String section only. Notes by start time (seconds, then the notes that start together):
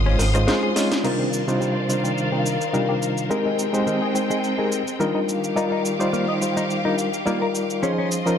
Already playing: F5 C6 D#6
1.04 D#3 A#4 C5 D5 F5
3.30 G#3 C4 G5
5.28 D#3 G4 F5 D6
7.82 F4 D#5 C6